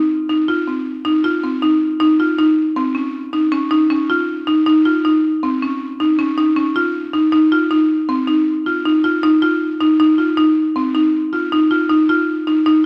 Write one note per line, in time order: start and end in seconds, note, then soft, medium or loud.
0.00 0.12 D#4 medium
0.29 0.40 D#4 medium
0.48 0.59 F4 medium
0.67 0.88 C4 medium
1.05 1.15 D#4 medium
1.24 1.35 F4 medium
1.43 1.54 C4 medium
1.62 1.83 D#4 medium
2.00 2.10 D#4 medium
2.20 2.30 F4 medium
2.39 2.59 D#4 medium
2.76 2.87 C4 medium
2.95 3.16 C#4 medium
3.33 3.44 D#4 medium
3.52 3.62 C#4 medium
3.71 3.81 D#4 medium
3.90 4.01 C#4 medium
4.10 4.30 F4 medium
4.47 4.58 D#4 medium
4.66 4.77 D#4 medium
4.85 4.96 F4 medium
5.05 5.26 D#4 medium
5.43 5.53 C4 medium
5.62 5.83 C#4 medium
6.00 6.10 D#4 medium
6.19 6.29 C#4 medium
6.38 6.48 D#4 medium
6.57 6.67 C#4 medium
6.76 6.97 F4 medium
7.13 7.24 D#4 medium
7.32 7.43 D#4 medium
7.52 7.62 F4 medium
7.71 7.92 D#4 medium
8.09 8.19 C4 medium
8.27 8.49 D#4 medium
8.66 8.77 F4 medium
8.85 8.96 D#4 medium
9.04 9.15 F4 medium
9.23 9.34 D#4 medium
9.42 9.63 F4 medium
9.81 9.91 D#4 medium
10.00 10.10 D#4 medium
10.18 10.29 F4 medium
10.37 10.58 D#4 medium
10.76 10.86 C4 medium
10.95 11.16 D#4 medium
11.33 11.43 F4 medium
11.52 11.63 D#4 medium
11.71 11.81 F4 medium
11.90 12.00 D#4 medium
12.09 12.30 F4 medium
12.47 12.58 D#4 medium
12.66 12.77 D#4 medium